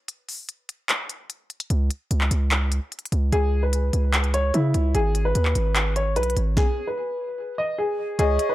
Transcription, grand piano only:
3.33 3.61 G#4 loud
3.63 4.30 B4 medium
4.34 4.52 C#5 medium
4.54 4.92 E4 medium
4.95 5.23 G#4 loud
5.25 5.92 B4 medium
5.96 6.14 C#5 medium
6.16 6.34 B4 medium
6.57 6.85 G#4 loud
6.87 7.54 B4 medium
7.58 7.76 D#5 medium
7.78 8.17 G#4 medium
8.19 8.48 G#4 loud
8.49 8.55 B4 medium

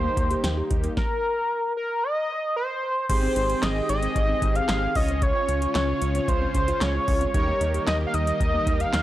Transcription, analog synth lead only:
0.00 0.71 C5 medium
0.97 1.73 A#4 loud
1.77 2.05 A#4 medium
2.03 2.56 D#5 loud
2.56 3.06 C5 loud
3.09 3.64 C5 loud
3.63 3.89 D#5 loud
3.89 4.57 D#5 loud
4.56 4.97 F5 loud
4.96 5.24 D#5 loud
5.22 5.75 C#5 loud
5.75 6.30 C#5 loud
6.28 6.54 C5 loud
6.55 6.83 C5 medium
6.82 7.34 C#5 loud
7.34 7.84 C#5 loud
7.87 7.96 D#5 loud
8.07 8.16 F5 medium
8.14 8.82 D#5 loud
8.81 9.03 F5 loud

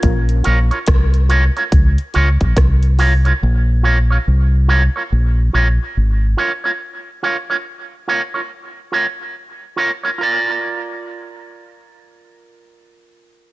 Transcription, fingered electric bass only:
0.04 0.41 A#1 loud
0.47 0.69 A#1 loud
0.88 1.49 C2 medium
1.73 1.96 C#2 medium
2.16 2.39 C#2 medium
2.42 2.55 A#1 medium
2.57 3.32 C2 medium
3.43 4.17 A#1 loud
4.28 4.88 C2 medium
5.12 5.49 A#1 medium
5.54 5.77 A#1 medium
5.97 6.34 G#1 medium

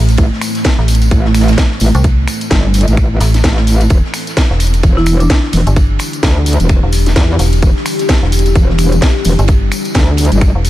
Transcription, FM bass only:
0.00 0.17 A1 loud
0.78 1.10 A1 medium
1.95 2.26 C2 loud
3.21 3.42 A1 medium
4.51 4.82 E1 medium
5.67 5.98 G1 loud
6.83 7.14 E1 loud
7.39 7.61 E1 loud
8.23 8.54 E1 medium
9.39 9.70 G1 loud
10.55 10.70 E1 loud

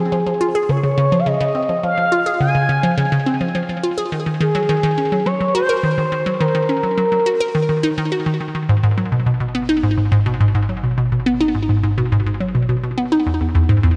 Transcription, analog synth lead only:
0.00 0.71 G#4 medium
0.69 1.21 C#5 loud
1.19 1.28 F5 medium
1.27 1.83 D#5 medium
1.84 2.37 F5 loud
2.41 3.22 G#5 loud
4.41 5.27 G#4 loud
5.26 5.54 C#5 loud
5.54 6.42 C5 loud
6.40 8.12 A#4 loud

